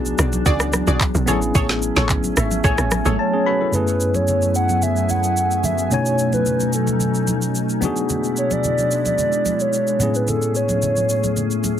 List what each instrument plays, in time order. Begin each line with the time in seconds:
Already playing: log drum bass B1, ambient pad E3 F#3 D4, tine electric piano B3 D4 F#4 G#4
0.06 high conga, shaker
0.18 log drum bass B1, cross-stick, shaker
0.33 high conga, shaker
0.46 log drum bass C#2, synth stab F#4 G#4 D5, kick, low conga, shaker
0.60 cross-stick, shaker
0.73 cross-stick, high conga, shaker
0.87 log drum bass B1, synth stab F#4 G#4 D5, shaker
1.00 kick, clap, shaker
1.15 log drum bass B1, shaker
1.26 log drum bass A1, ambient pad A3 C#4, tine electric piano B3 C#4 E4, synth stab G#4 A4 C#5, high conga, low conga, shaker
1.30 tine electric piano G#4
1.42 shaker
1.55 log drum bass A1, synth stab G#4 A4 C#5, kick, low conga, shaker
1.69 snare, shaker
1.82 shaker
1.96 log drum bass A1, synth stab G#4 A4 C#5, snare, high conga, shaker
2.09 kick, clap, low conga, shaker
2.24 high conga, shaker
2.37 log drum bass G#1, tine electric piano E5, cross-stick, shaker
2.51 high conga, shaker
2.64 log drum bass A1, synth stab G#4 A4 C#5, tine electric piano G#5, kick, low conga, shaker
2.78 log drum bass A1, cross-stick, shaker
2.91 cross-stick, high conga, shaker
3.05 log drum bass G#1, synth stab G#4 A4 C#5, shaker
3.19 soft synth lead C#5, tine electric piano A5
3.33 tine electric piano C#4 G#4
3.46 tine electric piano F#4 B4 B5
3.61 tine electric piano E4 A4
3.72 tine electric piano F#2 A3 B3 C#4 E4, ambient pad F#2 F#3 A3 B3 E4 G#5, soft synth lead B4, low conga, shaker
3.76 tine electric piano G#4
3.88 shaker
4.01 shaker
4.14 soft synth lead C#5, high conga, shaker
4.28 low conga, shaker
4.42 high conga, shaker
4.55 soft synth lead F#5, shaker
4.69 high conga, shaker
4.82 soft synth lead E5, low conga, shaker
4.96 shaker
5.09 soft synth lead F#5, high conga, shaker
5.24 shaker
5.37 shaker
5.51 shaker
5.64 soft synth lead E5, high conga, low conga, shaker
5.78 shaker
5.90 tine electric piano B2 A3 C#4 D#4 F#4, ambient pad B2 C#4 D#4, soft synth lead C#5, low conga, shaker
5.94 tine electric piano G#5
6.06 shaker
6.19 shaker
6.33 soft synth lead B4, high conga, shaker
6.46 low conga, shaker
6.60 high conga, shaker
6.73 soft synth lead A4, shaker
6.87 high conga, shaker
7.00 low conga, shaker
7.15 shaker
7.27 high conga, shaker
7.42 shaker
7.55 shaker
7.69 shaker
7.81 ambient pad B2 G#3 D4 E4, tine electric piano B3 D4 F#4, high conga, low conga, shaker
7.85 tine electric piano G#4
7.96 shaker
8.09 low conga, shaker
8.24 shaker
8.37 soft synth lead C#5, shaker
8.51 soft synth lead D5, high conga, shaker
8.64 low conga, shaker
8.78 high conga, shaker
8.91 shaker
9.05 soft synth lead D5, high conga, shaker
9.18 low conga, shaker
9.33 shaker
9.46 high conga, shaker
9.60 soft synth lead C#5, shaker
9.73 shaker
9.87 shaker
9.99 tine electric piano A2 B3 C#4 E4, ambient pad A2 A3 C#4 G#4, high conga, low conga, shaker
10.03 tine electric piano G#4
10.15 soft synth lead B4, shaker
10.28 soft synth lead A4, low conga, shaker
10.42 shaker
10.55 soft synth lead C#5, shaker
10.69 high conga, shaker
10.82 low conga, shaker
10.96 high conga, shaker
11.09 shaker
11.24 high conga, shaker
11.36 low conga, shaker
11.51 shaker
11.64 high conga, shaker